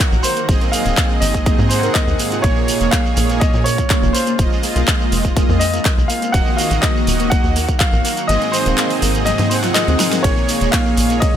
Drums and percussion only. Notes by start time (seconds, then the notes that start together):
0.00 shekere
0.12 shekere
0.24 open hi-hat, shekere
0.36 closed hi-hat, shekere
0.49 kick, closed hi-hat, shekere
0.61 closed hi-hat, shekere
0.73 open hi-hat, shekere
0.86 closed hi-hat, shekere
0.97 kick, clap, closed hi-hat, shekere
1.10 shekere
1.22 open hi-hat, shekere
1.34 kick, closed hi-hat, shekere
1.46 kick, closed hi-hat, shekere
1.59 shekere
1.70 open hi-hat, shekere
1.83 closed hi-hat, shekere
1.95 kick, clap, closed hi-hat, shekere
2.08 shekere
2.19 open hi-hat, shekere
2.32 closed hi-hat, shekere
2.44 kick, closed hi-hat, shekere
2.56 shekere
2.68 open hi-hat, shekere
2.81 closed hi-hat, shekere
2.92 kick, clap, closed hi-hat, shekere
3.06 shekere
3.17 open hi-hat, shekere
3.29 closed hi-hat, shekere
3.41 kick, closed hi-hat, shekere
3.54 shekere
3.66 open hi-hat, shekere
3.78 kick, closed hi-hat, shekere
3.90 kick, clap, closed hi-hat, shekere
4.03 shekere
4.15 open hi-hat, shekere
4.27 closed hi-hat, shekere
4.39 kick, closed hi-hat, shekere
4.53 shekere
4.63 open hi-hat, shekere
4.76 closed hi-hat, shekere
4.87 kick, clap, closed hi-hat, shekere
5.01 shekere
5.12 open hi-hat, shekere
5.24 kick, closed hi-hat, shekere
5.37 kick, closed hi-hat, shekere
5.49 shekere
5.61 open hi-hat, shekere
5.74 closed hi-hat, shekere
5.85 kick, clap, closed hi-hat, shekere
5.98 shekere
6.10 open hi-hat, shekere
6.22 closed hi-hat, shekere
6.34 kick, closed hi-hat, shekere
6.47 shekere
6.58 open hi-hat, shekere
6.71 closed hi-hat, shekere
6.83 kick, clap, closed hi-hat, shekere
6.96 shekere
7.07 open hi-hat, shekere
7.19 closed hi-hat, shekere
7.32 kick, closed hi-hat, shekere
7.44 shekere
7.56 open hi-hat, shekere
7.68 kick, closed hi-hat, shekere
7.80 kick, clap, closed hi-hat, shekere
7.93 shekere
8.05 open hi-hat, shekere
8.17 closed hi-hat, shekere
8.29 closed hi-hat, shekere
8.42 closed hi-hat, shekere
8.54 open hi-hat, shekere
8.66 closed hi-hat, shekere
8.78 clap, closed hi-hat, shekere
8.90 open hi-hat, shekere
9.02 open hi-hat, shekere
9.15 closed hi-hat, shekere
9.27 snare, closed hi-hat, shekere
9.39 snare, closed hi-hat, shekere
9.51 open hi-hat, shekere
9.64 snare, closed hi-hat, shekere
9.75 snare, clap, closed hi-hat, shekere
9.88 closed hi-hat, shekere
10.00 snare, open hi-hat, shekere
10.12 snare, closed hi-hat, shekere
10.24 kick, closed hi-hat, ride, shekere
10.37 shekere
10.49 open hi-hat, shekere
10.61 closed hi-hat, shekere
10.73 kick, clap, closed hi-hat, ride, shekere
10.86 shekere
10.97 open hi-hat, shekere
11.10 closed hi-hat, shekere
11.22 kick, closed hi-hat, ride, shekere